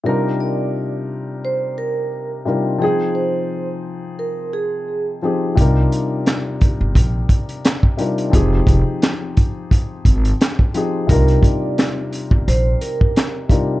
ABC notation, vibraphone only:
X:1
M:4/4
L:1/16
Q:"Swing 16ths" 1/4=87
K:Cm
V:1 name="Vibraphone"
B2 d3 z3 c2 B3 z3 | A2 c3 z3 B2 A3 z3 | z16 | z16 |
B2 d3 z3 c2 B3 z3 |]